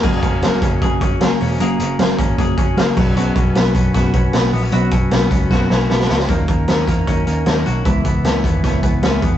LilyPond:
<<
  \new Staff \with { instrumentName = "Clean electric guitar" } { \time 4/4 \key fis \mixolydian \tempo 4 = 154 <fis ais cis' fis' gis'>8 <cis' fis' gis'>8 <fis ais cis' fis' gis'>8 <cis' fis' gis'>8 <ais cis' fis' gis'>8 <cis' fis' gis'>8 <fis ais cis' fis' gis'>8 <cis' fis' gis'>8 | <fis ais cis' fis' gis'>8 <cis' fis' gis'>8 <fis ais cis' fis' gis'>8 <cis' fis' gis'>8 <ais cis' fis' gis'>8 <cis' fis' gis'>8 <fis ais cis' fis' gis'>8 <cis' fis' b'>8 | <b cis' fis' b'>8 <cis' fis' b'>8 <b cis' fis' b'>8 <cis' fis' b'>8 <b cis' fis' b'>8 <cis' fis' b'>8 <b cis' fis' b'>8 <cis' fis' b'>8 | <b cis' fis' b'>8 <cis' fis' b'>8 <b cis' fis' b'>8 <cis' fis'>8 <b cis' fis' b'>8 <cis' fis' b'>8 <b cis' fis' b'>8 <cis' fis' b'>8 |
<dis fis cis' dis' ais'>8 <cis' dis' ais'>8 <dis fis cis' dis' ais'>8 <cis' dis' ais'>8 <fis cis' dis' ais'>8 <cis' dis' ais'>8 <dis fis cis' dis' ais'>8 <cis' dis' ais'>8 | <cis gis b e' b'>8 <b e' b'>8 <cis gis b e' b'>8 <b e' b'>8 <gis b e' b'>8 <b e' b'>8 <cis gis b e' b'>8 <b dis' gis'>8 | }
  \new Staff \with { instrumentName = "Clean electric guitar" } { \time 4/4 \key fis \mixolydian <ais gis'>8 cis'8 ais8 cis'8 gis'8 cis'8 ais8 cis'8 | <ais gis'>8 cis'8 ais8 cis'8 gis'8 cis'8 ais8 fis8 | <fis fis'>8 cis'8 b8 cis'8 fis'8 cis'8 b8 b16 cis'16 | <fis fis'>8 cis'8 b8 cis'8 fis'8 cis'8 b8 cis'8 |
ais8 ais8 b16 cis'16 ais8 cis'8 ais8 cis'8 fis'8 | e8 b8 cis'8 b8 cis'8 b8 cis'8 b8 | }
  \new Staff \with { instrumentName = "Picked electric bass" } { \clef bass \time 4/4 \key fis \mixolydian fis,,8 fis,,8 fis,,8 fis,,8 fis,,8 fis,,8 fis,,8 e,,8 | fis,,8 fis,,8 fis,,8 gis,,8 fis,,8 fis,,8 fis,,8 b,,8~ | b,,8 b,,8 b,,8 b,,8 b,,8 b,,8 b,,8 ais,,8 | b,,8 b,,8 b,,8 cis,8 b,,8 b,,8 b,,8 cis,8 |
dis,8 dis,8 dis,8 e,8 dis,8 dis,8 dis,8 b,,8 | cis,8 cis,8 cis,8 dis,8 cis,8 cis,8 cis,8 e,8 | }
  \new DrumStaff \with { instrumentName = "Drums" } \drummode { \time 4/4 <cymc bd>8 <hh bd>8 <hh sn>8 <hh bd>8 <hh bd>8 <hh bd>8 <hh sn>8 hho8 | hh8 hh8 <hh sn>8 <hh bd>8 <hh bd>8 <hh bd>8 <hh sn>8 <cymc bd>8 | hh8 <hh bd>8 <hh sn>8 <hh bd>8 <hh bd sn>8 <hh bd>8 <hh sn>8 hho8 | hh8 <hh bd>8 <hh sn>8 <hh bd>8 <bd sn>8 sn8 sn16 sn16 sn16 sn16 |
<hh bd>8 <hh bd>8 <hh sn>8 <hh bd>8 <hh bd>8 hh8 <hh sn>8 hh8 | <hh bd>8 <hh bd>8 <hh sn>8 <hh bd>8 <hh bd sn>8 <hh bd>8 <hh sn>8 <hh bd>8 | }
>>